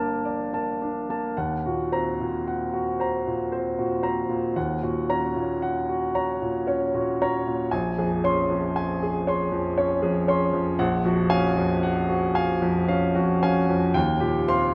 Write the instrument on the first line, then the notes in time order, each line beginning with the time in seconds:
grand piano
Already playing: G1 A#3 D4 A#4 A5
0.25 D5
0.53 A#4 A5
0.82 D4
1.10 A#3 A#4 A5
1.37 D#2 F#5
1.66 A#2 F#4
1.92 C4 C5 A#5
2.20 A#2
2.48 F#5
2.74 F#4
3.00 C5 A#5
3.27 A#2
3.52 C4 C5
3.79 A#2 F#4
4.03 C4 C5 A#5
4.29 A#2
4.56 D#2 F#5
4.83 A#2 F#4
5.09 C#4 C#5 A#5
5.36 A#2
5.62 F#5
5.89 F#4
6.15 C#5 A#5
6.42 A#2
6.67 C#4 C#5
6.94 A#2 F#4
7.22 C#4 C#5 A#5
7.47 A#2
7.71 A#1 G#5
7.98 F2 G#4
8.24 C#4 C#5 C6
8.50 F2
8.76 G#5
9.03 G#4
9.27 C#5 C6
9.52 F2
9.78 C#4 C#5
10.02 F2 G#4
10.28 C#4 C#5 C6
10.53 F2
10.79 A#1 F#5
11.05 F2 F#4
11.30 C#4 F5 G#5
11.57 F2
11.83 F#5
12.09 F#4
12.35 F5 G#5
12.62 F2
12.88 C#4 F5
13.15 F2 F#4
13.43 C#4 F5 G#5
13.68 F2
13.94 D#2 G5
14.20 A#2 G4
14.48 C4 F5 C6